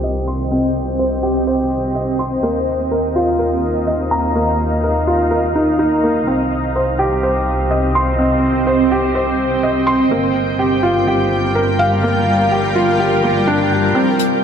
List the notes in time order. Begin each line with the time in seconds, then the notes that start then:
Already playing: C2 C4 G4 C5 D#5 G5
0.04 D#5
0.28 C6
0.52 C4
0.99 C5
1.23 G4
1.47 C5
1.95 D#5
2.19 C6
2.43 D#2 A#3 D#4
2.64 F5
2.91 A#4
3.03 A#5
3.16 F4
3.39 A#4
3.87 D#5
4.11 A#5
4.35 A#3
4.84 A#4
5.07 F4
5.31 A#4
5.56 D#4
5.79 D#4
6.03 A#3
6.27 C2 C4
6.76 C5
6.81 C5
6.99 G4
7.23 C5
7.71 D#5
7.95 C6
8.00 G5
8.19 C4
8.67 C5
8.91 G4
9.15 C5
9.63 D#5
9.87 C6
10.11 G1 G3 A#3
10.37 F4
10.57 G4 A#4
10.83 F4
11.07 G4
11.55 A#4
11.79 F5
12.03 A#3
12.51 G4
12.75 F4
12.99 G4
13.24 A#3
13.47 D4
13.72 G4
13.95 C2 C4
14.13 C5
14.19 closed hi-hat